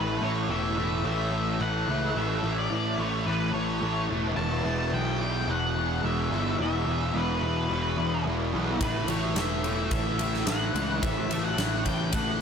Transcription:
0.00 0.21 A1 medium
0.00 0.48 A2 medium
0.00 0.22 E3 medium
0.00 0.21 A3 medium
0.00 0.23 B4 medium
0.22 0.48 A1 medium
0.22 0.49 E3 medium
0.22 0.50 A3 medium
0.22 0.51 C#5 medium
0.48 1.02 E1 medium
0.48 1.04 A2 medium
0.48 0.78 E3 medium
0.48 0.76 A3 medium
0.48 1.06 E5 medium
0.76 1.05 E3 medium
0.76 1.04 A3 medium
1.04 1.57 A1 medium
1.04 1.59 A2 medium
1.04 1.33 E3 medium
1.04 1.30 A3 medium
1.04 1.63 E5 medium
1.31 1.61 E3 medium
1.31 1.60 A3 medium
1.60 1.87 A1 medium
1.60 2.14 A2 medium
1.60 1.90 E3 medium
1.60 1.87 A3 medium
1.60 2.18 F#5 medium
1.88 2.15 C#2 medium
1.88 2.16 E3 medium
1.88 2.16 A3 medium
2.15 2.42 A1 medium
2.15 2.69 A2 loud
2.15 2.45 E3 medium
2.15 2.42 A3 loud
2.15 2.58 E5 loud
2.43 2.70 A1 medium
2.43 2.71 E3 medium
2.43 2.71 A3 medium
2.58 3.01 D5 loud
2.70 2.98 A1 medium
2.70 3.25 A2 medium
2.70 3.01 E3 medium
2.70 2.98 A3 medium
2.98 3.25 A1 medium
2.98 3.26 E3 soft
2.98 3.27 A3 medium
2.98 3.26 C#5 medium
3.26 3.53 A1 medium
3.26 3.79 A2 medium
3.26 3.55 E3 loud
3.26 3.52 A3 loud
3.26 3.53 B4 medium
3.53 3.81 A1 medium
3.53 3.81 E3 medium
3.53 3.81 A3 medium
3.53 4.06 C#5 medium
3.80 4.08 A1 medium
3.80 4.35 A2 medium
3.80 4.10 E3 medium
3.80 4.08 A3 medium
4.09 4.37 E1 medium
4.09 4.37 E3 medium
4.09 4.36 A3 medium
4.36 4.64 E1 medium
4.36 4.92 E2 medium
4.36 4.65 B2 medium
4.36 4.64 E3 loud
4.36 4.94 A5 loud
4.64 4.91 E1 medium
4.64 4.92 B2 medium
4.64 4.93 E3 medium
4.92 5.46 B1 medium
4.92 5.46 E2 medium
4.92 5.20 B2 medium
4.92 5.19 E3 medium
4.92 5.51 G5 medium
5.19 5.47 B2 medium
5.19 5.48 E3 medium
5.47 6.01 E1 medium
5.47 6.01 E2 medium
5.47 5.76 B2 medium
5.47 5.74 E3 medium
5.47 6.05 F#5 medium
5.74 6.03 B2 soft
5.74 6.04 E3 medium
6.03 6.30 E1 medium
6.03 6.57 E2 medium
6.03 6.31 B2 medium
6.03 6.30 E3 medium
6.03 6.57 E5 medium
6.30 6.58 G1 medium
6.30 6.58 B2 medium
6.30 6.59 E3 medium
6.58 6.86 E1 medium
6.58 7.12 E2 medium
6.58 6.86 B2 loud
6.58 6.85 E3 medium
6.62 7.18 E5 loud
6.85 7.13 E1 medium
6.85 7.13 B2 medium
6.85 7.14 E3 medium
7.13 7.41 E1 medium
7.13 7.69 E2 medium
7.13 7.43 B2 medium
7.13 7.42 E3 medium
7.13 8.23 B4 medium
7.41 7.68 E1 medium
7.41 7.70 B2 soft
7.41 7.71 E3 medium
7.70 7.97 E1 medium
7.70 8.25 E2 medium
7.70 7.99 B2 loud
7.70 7.97 E3 medium
7.98 8.24 E1 medium
7.98 8.26 B2 medium
7.98 8.28 E3 medium
8.26 8.52 E1 medium
8.26 8.80 E2 medium
8.26 8.55 B2 medium
8.26 8.53 E3 medium
8.54 8.80 B1 medium
8.54 8.81 B2 medium
8.54 8.82 E3 medium
8.81 9.07 A1 medium
8.81 9.36 A2 medium
8.81 9.10 E3 medium
8.81 9.09 A3 medium
8.81 9.10 B4 medium
8.81 kick loud
8.81 ride medium
9.08 9.35 A1 medium
9.08 9.37 E3 medium
9.08 9.38 A3 medium
9.08 9.38 C#5 medium
9.08 ride medium
9.35 9.89 E1 medium
9.35 9.91 A2 medium
9.35 9.65 E3 medium
9.35 9.63 A3 medium
9.35 9.92 E5 medium
9.35 snare medium
9.35 ride medium
9.64 9.92 E3 soft
9.64 9.92 A3 medium
9.64 ride medium
9.91 10.45 A1 medium
9.91 10.45 A2 medium
9.91 10.21 E3 medium
9.91 10.18 A3 medium
9.91 10.47 E5 medium
9.91 kick loud
9.91 ride medium
10.19 10.47 E3 medium
10.19 10.47 A3 medium
10.19 ride medium
10.34 snare soft
10.46 10.73 A1 medium
10.46 11.01 A2 medium
10.46 10.76 E3 medium
10.46 10.73 A3 medium
10.46 11.03 F#5 medium
10.46 snare loud
10.46 ride medium
10.74 11.01 C#2 medium
10.74 11.03 E3 medium
10.74 11.03 A3 medium
10.74 ride medium
11.02 11.28 A1 medium
11.02 11.57 A2 medium
11.02 11.31 E3 medium
11.02 11.28 A3 loud
11.02 11.44 E5 loud
11.02 kick loud
11.02 ride medium
11.29 11.56 A1 medium
11.29 11.58 E3 medium
11.29 11.58 A3 medium
11.29 ride medium
11.44 11.85 F#5 loud
11.57 11.84 A1 medium
11.57 12.12 A2 medium
11.57 11.87 E3 medium
11.57 11.84 A3 medium
11.57 snare medium
11.57 ride medium
11.85 12.13 A1 medium
11.85 12.14 E3 soft
11.85 12.14 A3 medium
11.85 12.14 G5 loud
11.85 kick medium
11.85 ride medium
12.12 12.40 A1 medium
12.12 12.41 A2 medium
12.12 12.41 E3 medium
12.12 12.40 A3 loud
12.12 12.41 F#5 medium
12.12 kick loud
12.12 ride medium

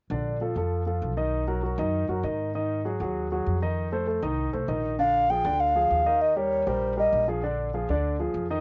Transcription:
0.10 0.53 A#1 medium
0.10 0.36 D3 medium
0.10 0.36 D4 medium
0.10 0.36 D5 medium
0.41 0.53 F3 medium
0.41 0.54 F4 medium
0.41 0.54 A4 medium
0.56 0.99 F2 medium
0.56 0.81 F3 medium
0.56 0.82 F4 medium
0.56 0.82 A4 medium
0.86 1.12 F3 medium
0.86 1.12 F4 medium
0.86 1.12 A4 medium
1.02 1.73 B1 medium
1.17 1.42 D#3 medium
1.17 1.42 D#4 medium
1.17 1.43 D#5 medium
1.48 1.60 F#3 medium
1.48 1.60 F#4 medium
1.48 1.61 A#4 medium
1.63 1.76 F#3 medium
1.63 1.76 F#4 medium
1.63 1.76 A#4 medium
1.78 2.07 F#2 medium
1.78 2.04 D#3 medium
1.78 2.04 D#4 medium
1.78 2.04 D#5 medium
2.09 2.23 F#2 medium
2.09 2.22 F#3 medium
2.09 2.22 F#4 medium
2.09 2.22 A#4 medium
2.24 2.95 G#2 medium
2.24 2.49 D#3 medium
2.24 2.49 D#4 medium
2.24 2.50 D#5 medium
2.55 2.80 D#3 medium
2.55 2.80 D#4 medium
2.55 2.80 D#5 medium
2.85 2.98 F#3 medium
2.85 2.98 F#4 medium
2.85 2.98 G#4 medium
3.00 3.43 D#2 medium
3.00 3.26 F#3 medium
3.00 3.26 F#4 medium
3.00 3.26 G#4 medium
3.31 3.56 F#3 medium
3.31 3.57 F#4 medium
3.31 3.57 G#4 medium
3.46 4.17 F2 medium
3.62 3.87 D#3 medium
3.62 3.87 D#4 medium
3.62 3.87 D#5 medium
3.92 4.05 A3 medium
3.92 4.05 A4 medium
3.92 4.05 C5 medium
4.07 4.20 A3 medium
4.07 4.20 A4 medium
4.07 4.20 C5 medium
4.22 4.51 C2 medium
4.22 4.48 D#3 medium
4.22 4.48 D#4 medium
4.22 4.48 D#5 medium
4.53 4.67 C2 medium
4.53 4.66 A3 medium
4.53 4.66 A4 medium
4.53 4.66 C5 medium
4.68 5.39 A#1 medium
4.68 4.93 D#3 medium
4.68 4.94 D#4 medium
4.68 4.94 D#5 medium
4.99 5.24 D3 medium
4.99 5.24 D4 medium
4.99 5.24 D5 medium
4.99 5.31 F5 medium
5.30 5.42 F3 medium
5.30 5.43 F4 medium
5.30 5.43 G#4 medium
5.30 5.61 G5 medium
5.44 5.87 D2 medium
5.44 5.70 D3 medium
5.44 5.70 D4 medium
5.44 5.70 D5 medium
5.60 6.23 F5 medium
5.75 6.01 F3 medium
5.75 6.01 F4 medium
5.75 6.01 G#4 medium
5.90 6.62 D#2 medium
6.06 6.31 D#3 medium
6.06 6.31 D#4 medium
6.06 6.31 D#5 medium
6.21 6.38 D#5 medium
6.36 6.61 G3 medium
6.36 6.62 G4 medium
6.36 6.62 A#4 medium
6.36 6.69 C#5 medium
6.66 7.10 A#1 medium
6.66 6.92 G3 medium
6.66 6.92 G4 medium
6.66 6.92 A#4 medium
6.66 6.98 C5 medium
6.97 7.22 G3 medium
6.97 7.22 G4 medium
6.97 7.23 A#4 medium
6.97 7.27 D#5 medium
7.12 7.84 A#1 medium
7.28 7.40 F3 medium
7.28 7.41 F4 medium
7.28 7.41 G#4 medium
7.43 7.68 D3 medium
7.43 7.69 D4 medium
7.43 7.69 D5 medium
7.74 7.87 F3 medium
7.74 7.87 F4 medium
7.74 7.87 G#4 medium
7.89 8.32 D2 medium
7.89 8.15 D3 medium
7.89 8.15 D4 medium
7.89 8.15 D5 medium
8.20 8.45 F3 medium
8.20 8.45 F4 medium
8.20 8.45 G#4 medium
8.34 8.61 F2 medium
8.51 8.61 D#3 medium
8.51 8.61 D#4 medium
8.51 8.61 D#5 medium

